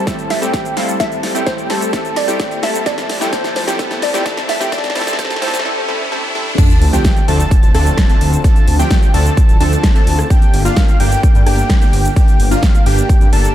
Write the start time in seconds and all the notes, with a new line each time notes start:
Already playing: A2 G3 C4 E4 A4, riser
0.06 A2 G3 A3 C4 E4 A4, kick, snare, closed hi-hat, shaker
0.19 closed hi-hat, shaker
0.30 E5, snare, open hi-hat
0.41 A2 G3 A3 C4 E4 G4 A4 G5, closed hi-hat, shaker
0.54 kick, snare, closed hi-hat, shaker
0.65 closed hi-hat, shaker
0.77 G3 A3 C4 E4 A4 F5 A5, snare, open hi-hat
0.88 closed hi-hat, shaker
1.00 A2 G3 A3 C4 E4 G4 A4 E5 A5, kick, snare, closed hi-hat, shaker
1.12 closed hi-hat, shaker
1.23 snare, open hi-hat
1.34 A2 G3 A3 C4 E4 G4 A4 G5, closed hi-hat, shaker
1.46 C5, kick, snare, closed hi-hat, shaker
1.58 closed hi-hat, shaker
1.70 G3 A3 C4 E4 A4 C5 A5, snare, open hi-hat
1.81 closed hi-hat, shaker
1.93 A2 G3 A3 C4 E4 A4 A5, kick, snare, closed hi-hat, shaker
2.05 closed hi-hat, shaker
2.16 D5, snare, open hi-hat
2.27 A2 G3 A3 C4 E4 G4 A4 G5, closed hi-hat, shaker
2.40 kick, snare, closed hi-hat, shaker
2.51 closed hi-hat, shaker
2.63 G3 A3 C4 E4 A4 E5 A5, snare, open hi-hat
2.75 closed hi-hat, shaker
2.86 A2 F3 G3 A3 C4 E4 A4 D5 A5, kick, snare, closed hi-hat, shaker
2.98 snare, closed hi-hat, shaker
3.09 snare, open hi-hat
3.20 A2 G3 A3 C4 E4 G4 A4 G5, snare, shaker
3.32 A2 G3 A3 C4 E4 A4 C5 A5, kick, snare, closed hi-hat, shaker
3.44 snare, closed hi-hat, shaker
3.56 C5, snare, open hi-hat
3.66 A2 G3 A3 C4 E4 G4 A4 G5, snare, shaker
3.78 A2 G3 A3 C4 E4 A4 A5, kick, snare, closed hi-hat, shaker
3.91 snare, closed hi-hat, shaker
4.02 D5, snare, open hi-hat
4.13 A2 G3 A3 C4 E4 G4 A4 G5, snare, closed hi-hat, shaker
4.25 A2 G3 A3 C4 E4 A4 A5, kick, snare, closed hi-hat, shaker
4.37 snare, closed hi-hat, shaker
4.49 E5, snare, open hi-hat
4.59 A2 G3 A3 C4 E4 G4 A4 G5, snare, shaker
4.72 A2 G3 A3 C4 E4 A4 D5 A5, kick, snare, closed hi-hat, shaker
4.78 snare
4.84 snare, closed hi-hat, shaker
4.90 snare
4.95 A2 G3 A3 C4 E4 A4 A5, snare, open hi-hat
5.01 snare
5.07 snare, closed hi-hat, shaker
5.13 snare
5.18 A2 G3 A3 C4 E4 A4 C5 A5, kick, snare, closed hi-hat, shaker
5.25 snare
5.30 snare, closed hi-hat, shaker
5.36 snare
5.41 A2 G3 A3 C4 E4 A4 C5 A5, snare, open hi-hat
5.48 snare
5.54 snare, closed hi-hat, shaker
5.59 snare
5.65 G3 A3 C4 E4 A4
5.88 G3 A3 C4 E4 A4
6.12 G3 A3 C4 E4 A4
6.35 G3 A3 C4 E4 A4
6.58 D3 F3 A3 C4 D4 F4 A4 A5, kick, closed hi-hat, crash, sub drop, shaker
6.70 closed hi-hat, shaker
6.81 D2, open hi-hat
6.93 F3 A3 C4 D4 G4 G5, closed hi-hat, shaker
7.05 kick, snare, closed hi-hat, shaker
7.17 closed hi-hat, shaker
7.28 D2 F3 A3 C4 D4 A4 A5, open hi-hat
7.40 closed hi-hat, shaker
7.51 kick, closed hi-hat, shaker
7.63 D1, closed hi-hat, shaker
7.75 D2 F3 A3 C4 D4 A4 A5, cross-stick, open hi-hat
7.86 closed hi-hat, shaker
7.98 kick, snare, closed hi-hat, shaker
8.09 F3 A3 C4 D4 A4 A5, closed hi-hat, shaker
8.21 D2, open hi-hat
8.33 closed hi-hat, shaker
8.44 F3 A3 C4 D4 A4 A5, kick, closed hi-hat, shaker
8.56 closed hi-hat, shaker
8.68 D2, open hi-hat
8.79 F3 A3 C4 D4 G4 G5, closed hi-hat, shaker
8.91 kick, snare, closed hi-hat, shaker
9.03 closed hi-hat, shaker
9.14 D2 F3 A3 C4 D4 A4 A5, open hi-hat
9.26 closed hi-hat, shaker
9.37 kick, closed hi-hat, shaker
9.49 D1, closed hi-hat, shaker
9.61 D2 F3 A3 C4 D4 A4 A5, open hi-hat
9.72 closed hi-hat, shaker
9.83 kick, snare, closed hi-hat, shaker
9.95 F3 A3 C4 D4 A4 A5, closed hi-hat, shaker
10.07 D2, open hi-hat
10.19 cross-stick, closed hi-hat, shaker
10.30 A#3 D4 G4 G5, kick, closed hi-hat, shaker
10.42 closed hi-hat, shaker
10.54 G1, open hi-hat
10.65 A#3 D4 F4 F5, closed hi-hat, shaker
10.77 kick, snare, closed hi-hat, shaker
10.88 closed hi-hat, shaker
11.00 G1 A#3 D4 G4 G5, open hi-hat
11.12 closed hi-hat, shaker
11.23 kick, closed hi-hat, shaker
11.35 G2, closed hi-hat, shaker
11.47 G1 A#3 D4 G4 G5, cross-stick, open hi-hat
11.58 closed hi-hat, shaker
11.70 kick, snare, closed hi-hat, shaker
11.81 A#3 D4 G4 G5, closed hi-hat, shaker
11.93 G1, open hi-hat
12.05 closed hi-hat, shaker
12.16 A#3 D4 G4 G5, kick, closed hi-hat, shaker
12.28 closed hi-hat, shaker
12.40 G1, open hi-hat
12.51 A#3 D4 F4 F5, closed hi-hat, shaker
12.63 kick, snare, closed hi-hat, shaker
12.75 closed hi-hat, shaker
12.86 G1 A#3 D4 G4 G5, open hi-hat
12.98 closed hi-hat, shaker
13.09 kick, closed hi-hat, shaker
13.21 G2, closed hi-hat, shaker
13.33 G1 A#3 D4 A4 A5, open hi-hat
13.44 closed hi-hat, shaker